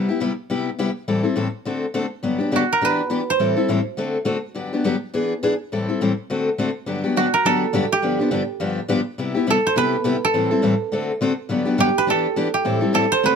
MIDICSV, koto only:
0, 0, Header, 1, 2, 480
1, 0, Start_track
1, 0, Key_signature, 1, "major"
1, 0, Tempo, 289575
1, 1775, Time_signature, 4, 2, 24, 8
1, 22137, End_track
2, 0, Start_track
2, 0, Title_t, "Koto"
2, 0, Program_c, 0, 107
2, 0, Note_on_c, 0, 67, 71
2, 1148, Note_off_c, 0, 67, 0
2, 4241, Note_on_c, 0, 66, 65
2, 4518, Note_on_c, 0, 70, 69
2, 4721, Note_on_c, 0, 71, 69
2, 4820, Note_off_c, 0, 70, 0
2, 5472, Note_on_c, 0, 72, 69
2, 5571, Note_off_c, 0, 71, 0
2, 7742, Note_off_c, 0, 66, 0
2, 8315, Note_off_c, 0, 72, 0
2, 11888, Note_on_c, 0, 66, 70
2, 12162, Note_on_c, 0, 70, 73
2, 12364, Note_on_c, 0, 69, 85
2, 12464, Note_off_c, 0, 70, 0
2, 13136, Note_on_c, 0, 67, 71
2, 13235, Note_off_c, 0, 66, 0
2, 15519, Note_off_c, 0, 69, 0
2, 15755, Note_on_c, 0, 69, 79
2, 16022, Note_on_c, 0, 72, 77
2, 16122, Note_off_c, 0, 72, 0
2, 16205, Note_on_c, 0, 71, 87
2, 16517, Note_off_c, 0, 67, 0
2, 16977, Note_off_c, 0, 69, 0
2, 16984, Note_on_c, 0, 69, 72
2, 19148, Note_off_c, 0, 71, 0
2, 19566, Note_on_c, 0, 67, 84
2, 19860, Note_on_c, 0, 71, 81
2, 19959, Note_off_c, 0, 71, 0
2, 20052, Note_off_c, 0, 69, 0
2, 20058, Note_on_c, 0, 69, 75
2, 20779, Note_off_c, 0, 67, 0
2, 20786, Note_on_c, 0, 67, 61
2, 21455, Note_off_c, 0, 69, 0
2, 21462, Note_on_c, 0, 69, 78
2, 21745, Note_on_c, 0, 72, 86
2, 21973, Note_on_c, 0, 71, 84
2, 22073, Note_off_c, 0, 72, 0
2, 22137, Note_off_c, 0, 67, 0
2, 22137, Note_off_c, 0, 69, 0
2, 22137, Note_off_c, 0, 71, 0
2, 22137, End_track
0, 0, End_of_file